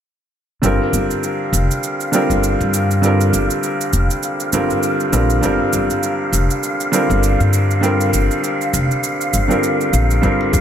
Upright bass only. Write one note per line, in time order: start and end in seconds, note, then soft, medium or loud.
0.63 0.78 G1 medium
0.93 1.08 G1 medium
1.53 1.67 F1 medium
2.30 2.55 G1 medium
2.60 3.30 G2 medium
3.33 3.48 G1 medium
3.93 4.08 F1 medium
4.53 4.68 G1 medium
5.13 5.39 A#1 medium
5.43 5.58 G1 medium
5.73 5.88 G1 medium
6.33 6.47 F1 medium
7.10 7.34 G1 medium
7.40 8.10 G2 medium
8.13 8.28 G1 medium
8.74 8.88 F1 medium
9.34 9.48 G1 medium
9.93 10.19 A#1 medium
10.23 10.38 G1 medium
10.53 10.61 G1 medium